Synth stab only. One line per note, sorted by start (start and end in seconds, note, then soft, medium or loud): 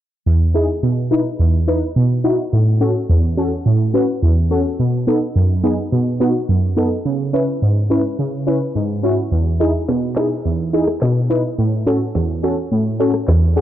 0.26 0.68 E2 medium
0.54 0.66 D#4 medium
0.54 0.66 E4 medium
0.54 0.66 G#4 medium
0.83 1.25 B2 medium
1.11 1.22 D#4 medium
1.11 1.22 E4 medium
1.11 1.23 B4 medium
1.39 1.82 E2 medium
1.68 1.79 D#4 medium
1.68 1.79 E4 medium
1.68 1.79 B4 loud
1.96 2.38 B2 medium
2.24 2.35 D#4 medium
2.24 2.36 E4 medium
2.24 2.36 F#4 medium
2.53 2.95 A2 medium
2.81 2.92 C#4 medium
2.81 2.92 F#4 medium
2.81 2.92 A4 medium
3.09 3.51 E2 medium
3.37 3.49 C#4 medium
3.37 3.49 F#4 medium
3.37 3.49 A4 medium
3.66 4.08 A2 medium
3.94 4.05 C#4 medium
3.94 4.05 F#4 medium
3.94 4.06 B4 medium
4.22 4.65 E2 medium
4.51 4.62 C#4 medium
4.51 4.62 F#4 medium
4.51 4.62 A4 medium
4.79 5.21 B2 medium
5.07 5.19 B3 medium
5.07 5.19 D#4 medium
5.07 5.19 A4 medium
5.36 5.78 F#2 medium
5.64 5.75 B3 medium
5.64 5.75 D#4 medium
5.64 5.75 G#4 medium
5.92 6.34 B2 medium
6.20 6.32 B3 medium
6.20 6.32 D#4 medium
6.20 6.32 F#4 medium
6.49 6.91 F#2 medium
6.77 6.88 B3 medium
6.77 6.88 D#4 medium
6.77 6.89 A4 medium
7.05 7.47 C#3 medium
7.33 7.45 C#4 medium
7.33 7.45 E4 medium
7.33 7.45 B4 loud
7.62 8.04 G#2 medium
7.90 8.02 C#4 medium
7.90 8.02 E4 medium
7.90 8.02 B4 medium
8.19 8.61 C#3 medium
8.47 8.58 C#4 medium
8.47 8.58 E4 medium
8.47 8.59 B4 medium
8.75 9.17 G#2 medium
9.03 9.15 C#4 medium
9.03 9.15 E4 medium
9.03 9.15 F#4 medium
9.32 9.74 E2 medium
9.60 9.71 D#4 medium
9.60 9.71 E4 medium
9.60 9.72 G#4 medium
9.89 10.31 B2 medium
10.16 10.28 D#4 medium
10.16 10.28 E4 medium
10.16 10.28 G#4 medium
10.45 10.87 E2 medium
10.73 10.85 D#4 medium
10.73 10.85 E4 medium
10.73 10.85 G#4 medium
11.02 11.44 B2 medium
11.30 11.41 D#4 medium
11.30 11.41 E4 medium
11.30 11.41 B4 medium
11.58 12.00 A2 medium
11.86 11.98 C#4 medium
11.86 11.98 F#4 medium
11.86 11.98 A4 loud
12.15 12.57 E2 medium
12.43 12.54 C#4 medium
12.43 12.55 F#4 medium
12.43 12.55 A4 medium
12.72 13.14 A2 medium
13.00 13.11 C#4 medium
13.00 13.11 F#4 medium
13.00 13.11 A4 medium
13.28 13.61 E2 medium
13.56 13.61 C#4 medium
13.56 13.61 F#4 medium
13.56 13.61 G#4 medium